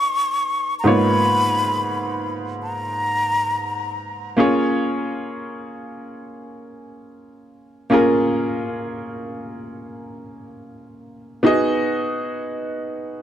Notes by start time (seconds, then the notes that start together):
Already playing: B3 D#4 F#4 G#4 D#5 C#6
0.80 A#5
0.84 G#2 A#3 B3 D#4 F4 C#5 B5
2.63 A#5
4.37 A#3 C#4 F4 G#4 C#5
7.90 A#3 C#4 F4 G#4 A#4
11.43 B3 D#4 F#4 G#4 D#5